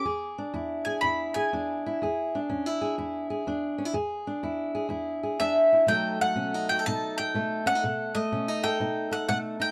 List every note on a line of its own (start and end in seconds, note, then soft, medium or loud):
0.00 0.81 D6 loud
0.05 0.51 E2 medium
0.05 0.86 G#4 medium
0.38 1.53 D4 medium
0.54 0.99 E2 medium
0.54 1.03 E4 medium
0.85 1.36 G#4 medium
0.85 1.01 G#5 medium
1.01 1.48 E2 medium
1.01 1.86 E4 medium
1.01 1.34 B5 medium
1.34 2.02 G#4 medium
1.34 2.28 G#5 medium
1.53 1.97 E2 medium
1.53 2.05 D4 medium
1.86 2.38 E4 medium
2.02 2.46 E2 medium
2.02 2.81 G#4 medium
2.35 3.46 D4 medium
2.49 2.94 E2 medium
2.49 2.66 C#4 medium
2.66 2.97 E4 medium
2.81 3.29 G#4 medium
2.98 3.43 E2 medium
2.98 3.78 E4 medium
3.30 3.92 G#4 medium
3.47 3.91 E2 medium
3.47 3.93 D4 medium
3.78 3.85 C#4 medium
3.85 3.94 E4 medium
3.93 4.39 E2 medium
3.93 4.74 G#4 medium
4.27 5.39 D4 medium
4.43 4.88 E2 medium
4.43 4.89 E4 medium
4.75 5.22 G#4 medium
4.89 5.35 E2 medium
4.89 5.71 E4 medium
5.23 5.86 G#4 medium
5.40 5.85 E2 medium
5.40 5.86 D4 medium
5.40 5.89 E5 loud
5.73 5.86 E4 medium
5.87 6.33 B2 medium
5.87 7.80 F#3 medium
5.87 6.21 A3 medium
5.87 6.36 D#4 medium
5.87 6.70 A4 medium
5.87 6.21 G5 loud
6.21 7.34 A3 medium
6.21 6.66 F#5 loud
6.36 6.81 B2 medium
6.36 6.54 C#4 medium
6.54 6.86 D#4 soft
6.69 6.79 F#4 medium
6.69 6.86 G5 medium
6.79 7.18 A4 medium
6.86 7.31 B2 medium
6.86 7.66 D#4 medium
6.86 7.17 A5 loud
7.18 7.81 A4 medium
7.18 7.67 G5 loud
7.34 7.79 B2 medium
7.34 8.14 A3 medium
7.66 7.75 C#4 medium
7.66 8.17 F#5 loud
7.75 7.83 D#4 medium
7.84 8.29 B2 medium
7.84 8.63 A4 medium
8.15 9.27 A3 medium
8.15 8.65 D#5 medium
8.32 8.77 B2 medium
8.32 8.48 C#4 medium
8.48 8.80 D#4 medium
8.64 9.10 A4 medium
8.64 9.12 G5 medium
8.80 9.25 B2 medium
8.80 9.59 D#4 medium
9.11 9.71 A4 medium
9.11 9.27 F#5 medium
9.29 9.71 B2 medium
9.29 9.71 A3 medium
9.29 9.37 F#5 loud
9.60 9.71 D#4 medium
9.60 9.71 G5 medium